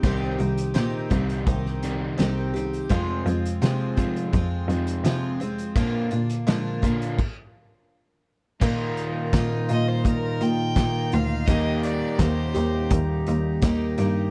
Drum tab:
CC |----------------|----------------|--------x-------|x---------------|
HH |x-xxx-xxx-x-x-xx|x-xxx-xxx-xxx-xx|x-xxx-xx--------|--x-x-x-x-x-x-x-|
SD |----o----o--o---|----o-------o---|----o-----------|----o-------o---|
BD |o-----o-o-------|o-----o-o-------|o-----o-o-------|o---o---o---o---|

CC |----------------|
HH |x-x-x-x-x-x-x-x-|
SD |----o-------o-o-|
BD |o---o---o---o---|